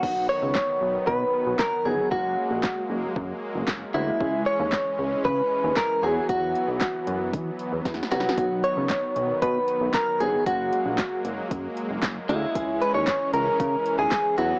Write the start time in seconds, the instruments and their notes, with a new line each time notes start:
Already playing: clean electric guitar F#4
0.03 analog synth bass B1, supersaw synth D#3 F#3 B3, grand piano F#3 B3 D#4 F#4, kick, crash
0.29 clean electric guitar C#5
0.42 analog synth bass C#2
0.54 kick, snare, clap
0.81 analog synth bass B1
1.07 analog synth bass B2, clean electric guitar B4, kick
1.46 analog synth bass B1
1.59 clean electric guitar A#4, kick, snare, clap
1.85 analog synth bass G1, grand piano F#3 B3 D#4 F#4, clean electric guitar G#4
2.11 analog synth bass F#1, grand piano G#3 A#3 C#4 F#4, supersaw synth G#3 A#3, clean electric guitar F#4, kick
2.51 analog synth bass A#1
2.63 kick, snare, clap
2.90 analog synth bass F#1
3.16 analog synth bass F#2, kick
3.55 analog synth bass F#1
3.67 analog synth bass F#1, kick, snare, clap
3.94 analog synth bass D2, grand piano G#3 A#3 C#4 F#4, clean electric guitar E4
4.20 analog synth bass C#2, supersaw synth E3 G#3 C#4, grand piano G#3 C#4 E4 G#4, kick
4.46 clean electric guitar C#5
4.60 analog synth bass D#2
4.72 kick, snare, clap
4.99 analog synth bass C#2
5.25 analog synth bass C#3, clean electric guitar B4, kick
5.64 analog synth bass D#2
5.76 clean electric guitar A#4, kick, snare, clap
6.03 analog synth bass E2, supersaw synth F#3 B3, grand piano F#3 B3 E4 F#4, clean electric guitar G#4
6.29 analog synth bass E2, clean electric guitar F#4, kick, closed hi-hat
6.55 closed hi-hat
6.68 analog synth bass B1
6.80 kick, snare, clap, closed hi-hat
7.07 analog synth bass F#2, closed hi-hat
7.33 analog synth bass E3, kick, closed hi-hat
7.59 closed hi-hat
7.73 analog synth bass E2
7.85 analog synth bass E2, kick, snare, closed hi-hat
7.94 snare
8.03 snare
8.12 analog synth bass C2, grand piano F#3 B3 E4 F#4, clean electric guitar F#4, snare, closed hi-hat
8.20 snare
8.29 snare
8.38 analog synth bass B1, supersaw synth D#3, grand piano F#3 B3 D#4 F#4, kick, closed hi-hat
8.64 clean electric guitar C#5, closed hi-hat
8.77 analog synth bass C#2
8.89 kick, snare, clap, closed hi-hat
9.16 analog synth bass B1, closed hi-hat
9.42 analog synth bass B2, clean electric guitar B4, kick, closed hi-hat
9.68 closed hi-hat
9.81 analog synth bass B1
9.93 clean electric guitar A#4, kick, snare, clap, closed hi-hat
10.20 analog synth bass G1, grand piano F#3 B3 D#4 G#4, clean electric guitar G#4, closed hi-hat
10.46 analog synth bass F#1, supersaw synth F#3 G#3 A#3, grand piano G#3 A#3 C#4 F#4, clean electric guitar F#4, kick, closed hi-hat
10.73 closed hi-hat
10.86 analog synth bass A#1
10.98 kick, snare, clap, closed hi-hat
11.25 analog synth bass F#1, closed hi-hat
11.51 analog synth bass F#2, kick, closed hi-hat
11.77 closed hi-hat
11.90 analog synth bass F#1
12.02 analog synth bass F#1, kick, snare, clap, closed hi-hat
12.29 analog synth bass D2, grand piano G#3 A#3 C#4 F#4, clean electric guitar E4, closed hi-hat
12.55 analog synth bass C#2, supersaw synth E3 C#4, grand piano G#3 C#4 E4 G#4, kick, closed hi-hat
12.81 clean electric guitar B4, closed hi-hat
12.94 analog synth bass D#2, clean electric guitar C#5
13.07 kick, snare, clap, closed hi-hat
13.33 analog synth bass C#2, clean electric guitar A#4, closed hi-hat
13.60 analog synth bass C#3, kick, closed hi-hat
13.85 closed hi-hat
13.99 analog synth bass D#2, clean electric guitar G#4
14.11 kick, snare, clap, closed hi-hat
14.38 analog synth bass E2, grand piano F#3 B3 E4 F#4, supersaw synth F#3 B3, clean electric guitar F#4, closed hi-hat